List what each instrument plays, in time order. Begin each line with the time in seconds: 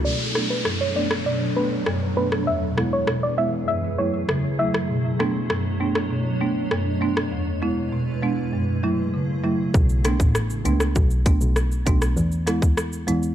0.04 ambient pad B2 F#3 D4 A4 C#5, marimba B2, synth pluck D5, downlifter
0.35 marimba A3 B3 D4, cross-stick
0.50 synth pluck B4
0.65 marimba F#2, cross-stick
0.81 synth pluck C#5
0.95 marimba A3 B3 D4, synth pluck D5
1.11 cross-stick
1.26 marimba B2, synth pluck D5
1.56 marimba A3 B3 D4, synth pluck B4
1.86 marimba F#2, cross-stick
2.16 marimba A3 B3 D4, synth pluck B4
2.32 cross-stick
2.47 marimba E2, ambient pad E2 E3 B3 G#4 B4, synth pluck E5
2.77 marimba G#3 B3 E4, cross-stick
2.93 synth pluck C#5
3.07 marimba B2, cross-stick
3.23 synth pluck D5
3.38 marimba G#3 B3 E4, synth pluck E5
3.68 ambient pad F#2 F#3 A3 E4, marimba F#2, synth pluck E5
3.98 marimba F#3 A3 E4, synth pluck C#5
4.29 marimba C#3, cross-stick
4.59 marimba F#3 A3 E4, synth pluck E5
4.74 cross-stick
4.89 ambient pad B2 D4 C#5, marimba B2
5.19 marimba A3 B3 D4, cross-stick
5.50 marimba F#2, cross-stick
5.80 marimba A3 B3 D4
5.95 cross-stick
6.11 marimba B2
6.41 marimba A3 B3 D4
6.71 marimba F#2, cross-stick
7.01 marimba A3 B3 D4
7.17 cross-stick
7.32 marimba E2, ambient pad E2 G#3 E4 B4
7.62 marimba G#3 B3 E4
7.92 marimba B2
8.22 marimba G#3 B3 D4
8.53 marimba F#2, ambient pad F#2 C#3 A3 E4 G#4
8.83 marimba F#3 A3 E4
9.14 marimba C#3
9.44 marimba F#3 A3 E4
9.74 double bass B1, kick, shaker
9.89 shaker
10.04 marimba A3 B3 D4, cross-stick, closed hi-hat, shaker
10.20 double bass A1, kick, shaker
10.35 cross-stick, shaker
10.50 shaker
10.65 double bass C#2, marimba A3 B3 D4, closed hi-hat, shaker
10.80 cross-stick, shaker
10.95 double bass B1, kick, shaker
11.11 shaker
11.26 marimba A3 B3 D4, kick, closed hi-hat, shaker
11.41 double bass B1, shaker
11.56 cross-stick, shaker
11.72 shaker
11.86 double bass B1, marimba A3 B3 D4, kick, closed hi-hat, shaker
12.02 cross-stick, shaker
12.17 double bass E2, shaker
12.32 shaker
12.47 marimba G#3 B3 E4, cross-stick, closed hi-hat, shaker
12.62 kick, shaker
12.77 cross-stick, shaker
12.93 shaker
13.07 double bass E2, marimba G#3 B3 E4, closed hi-hat, shaker
13.23 shaker